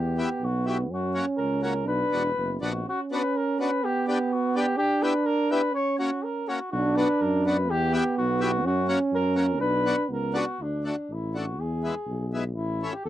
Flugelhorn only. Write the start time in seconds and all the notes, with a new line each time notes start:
Already playing: G4
0.22 G4
0.45 F#4
0.69 F#4
0.94 F#4
1.38 A#4
1.64 A#4
1.88 B4
2.64 F#4
2.89 F#4
3.14 B4
3.37 A#4
3.60 B4
3.84 G4
4.08 G4
4.33 F#4
4.57 G4
4.78 G4
5.03 B4
5.26 A#4
5.51 B4
5.74 C#5
5.99 F#4
6.23 A#4
6.49 F#4
6.72 F#4
6.97 B4
7.21 A#4
7.46 B4
7.70 G4
7.95 G4
8.18 F#4
8.43 F#4
8.67 F#4
9.15 A#4
9.37 A#4
9.61 B4
10.13 A#4
10.37 F#4
10.62 D4
10.87 D4
11.13 E4
11.38 F#4
11.60 G#4
12.55 E4
12.93 G4
13.05 A4